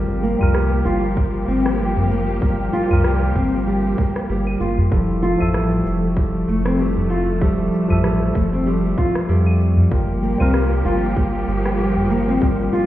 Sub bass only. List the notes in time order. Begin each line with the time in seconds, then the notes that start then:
Already playing: G1
0.41 C2
0.86 G1
1.48 G1
2.91 C2
3.36 G1
4.29 G1
4.60 G1
4.92 F1
5.40 A1
5.86 F1
6.48 F1
7.90 A1
8.35 F1
9.29 F2
9.91 G1
10.40 C2
10.85 G1
11.48 G1